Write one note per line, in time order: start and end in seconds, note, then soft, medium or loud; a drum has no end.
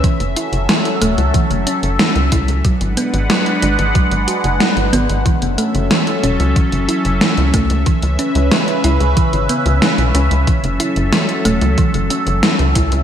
0.00 0.31 E3 medium
0.00 2.62 F#3 medium
0.00 2.61 C#4 medium
0.00 2.62 A4 medium
0.00 2.61 E5 medium
0.00 kick loud
0.00 closed hi-hat medium
0.20 0.35 F#1 medium
0.20 closed hi-hat soft
0.36 0.53 E4 medium
0.36 closed hi-hat medium
0.53 0.68 F#1 medium
0.53 closed hi-hat soft
0.69 0.86 E3 medium
0.69 snare loud
0.69 closed hi-hat medium
0.85 closed hi-hat soft
1.02 1.16 E1 loud
1.02 1.29 A3 loud
1.02 closed hi-hat medium
1.18 1.33 C#2 medium
1.18 closed hi-hat soft
1.34 1.62 E3 loud
1.34 kick loud
1.34 closed hi-hat medium
1.50 1.65 F#1 medium
1.50 closed hi-hat soft
1.67 1.83 C#4 medium
1.67 closed hi-hat medium
1.83 1.98 F#1 medium
1.83 closed hi-hat soft
1.99 2.16 E3 medium
1.99 snare loud
1.99 closed hi-hat medium
2.16 2.31 C#2 medium
2.16 closed hi-hat soft
2.32 2.47 C#2 medium
2.32 2.59 E4 medium
2.32 kick loud
2.32 closed hi-hat medium
2.48 2.63 C#2 medium
2.48 closed hi-hat soft
2.65 2.92 F#3 medium
2.65 5.23 G#3 medium
2.65 5.23 D4 medium
2.65 5.23 B4 medium
2.65 5.23 F#5 medium
2.65 kick loud
2.65 closed hi-hat medium
2.81 2.96 G#1 medium
2.81 closed hi-hat soft
2.97 3.25 B3 medium
2.97 closed hi-hat medium
3.14 3.28 G#1 medium
3.14 closed hi-hat soft
3.30 3.57 F#3 medium
3.30 snare loud
3.30 closed hi-hat medium
3.46 closed hi-hat soft
3.62 3.77 G#1 loud
3.62 3.79 D4 medium
3.62 closed hi-hat medium
3.79 3.94 G#1 medium
3.79 closed hi-hat soft
3.95 4.22 F#3 medium
3.95 kick loud
3.95 closed hi-hat medium
4.11 4.26 G#1 medium
4.11 closed hi-hat soft
4.28 4.44 F#4 medium
4.28 closed hi-hat medium
4.44 4.59 F#1 medium
4.44 closed hi-hat soft
4.60 4.77 F#3 medium
4.60 snare loud
4.60 closed hi-hat medium
4.77 4.91 G#1 medium
4.77 closed hi-hat soft
4.93 5.08 G#1 loud
4.93 5.20 B3 loud
4.93 closed hi-hat medium
5.09 5.24 G#1 medium
5.09 closed hi-hat soft
5.26 5.53 E3 loud
5.26 7.84 F#3 medium
5.26 7.84 C#4 medium
5.26 7.84 A4 medium
5.26 13.03 E5 medium
5.26 kick loud
5.26 closed hi-hat medium
5.42 5.57 F#1 medium
5.42 closed hi-hat soft
5.58 5.85 A3 medium
5.58 closed hi-hat medium
5.75 5.89 F#1 medium
5.75 closed hi-hat soft
5.91 6.18 E3 medium
5.91 snare loud
5.91 closed hi-hat medium
6.07 closed hi-hat soft
6.23 6.38 E1 medium
6.23 6.40 C#4 medium
6.23 closed hi-hat medium
6.40 6.55 C#2 medium
6.40 closed hi-hat soft
6.56 6.83 E3 medium
6.56 kick loud
6.56 closed hi-hat medium
6.72 6.87 F#1 medium
6.72 closed hi-hat soft
6.89 7.05 E4 medium
6.89 closed hi-hat medium
7.05 7.20 F#1 medium
7.05 closed hi-hat soft
7.21 7.38 E3 medium
7.21 snare loud
7.21 closed hi-hat medium
7.37 7.52 C#2 medium
7.37 closed hi-hat soft
7.54 7.69 C#2 medium
7.54 7.81 A3 loud
7.54 kick loud
7.54 closed hi-hat medium
7.70 7.85 C#2 medium
7.70 closed hi-hat soft
7.86 10.45 C#3 medium
7.86 8.14 E3 loud
7.86 13.03 C#4 medium
7.86 10.45 B4 medium
7.86 kick loud
7.86 closed hi-hat medium
8.02 8.18 C#2 medium
8.02 closed hi-hat soft
8.19 8.35 C#4 medium
8.19 closed hi-hat medium
8.35 8.50 C#2 medium
8.35 closed hi-hat soft
8.52 8.68 E3 medium
8.52 snare loud
8.52 closed hi-hat medium
8.68 closed hi-hat soft
8.84 8.99 C#2 loud
8.84 9.12 E4 medium
8.84 closed hi-hat medium
9.00 9.15 C#2 medium
9.00 closed hi-hat soft
9.17 9.44 E3 loud
9.17 kick loud
9.17 closed hi-hat medium
9.33 9.48 G#1 medium
9.33 closed hi-hat soft
9.49 9.77 B3 medium
9.49 closed hi-hat medium
9.66 9.81 C#2 medium
9.66 closed hi-hat soft
9.82 10.09 E3 medium
9.82 snare loud
9.82 closed hi-hat medium
9.98 10.13 B1 medium
9.98 closed hi-hat soft
10.15 10.29 C#2 loud
10.15 10.31 C#4 medium
10.15 closed hi-hat medium
10.31 10.46 C#2 medium
10.31 closed hi-hat soft
10.47 10.75 E3 medium
10.47 13.03 F#3 medium
10.47 13.03 A4 medium
10.47 kick loud
10.47 closed hi-hat medium
10.64 10.79 F#1 medium
10.64 closed hi-hat soft
10.80 10.96 E4 medium
10.80 closed hi-hat medium
10.96 11.11 F#1 medium
10.96 closed hi-hat soft
11.13 11.29 E3 medium
11.13 snare loud
11.13 closed hi-hat medium
11.29 closed hi-hat soft
11.45 11.60 E1 medium
11.45 11.72 A3 loud
11.45 closed hi-hat medium
11.61 11.76 C#2 medium
11.61 closed hi-hat soft
11.78 12.05 E3 loud
11.78 kick loud
11.78 closed hi-hat medium
11.94 12.09 F#1 medium
11.94 closed hi-hat soft
12.10 12.27 C#4 medium
12.10 closed hi-hat medium
12.27 12.42 F#1 medium
12.27 closed hi-hat soft
12.43 12.59 E3 medium
12.43 snare loud
12.43 closed hi-hat medium
12.59 12.74 C#2 medium
12.59 closed hi-hat soft
12.75 12.91 C#2 loud
12.75 13.03 E4 medium
12.75 kick medium
12.75 closed hi-hat medium
12.92 13.03 C#2 medium
12.92 closed hi-hat soft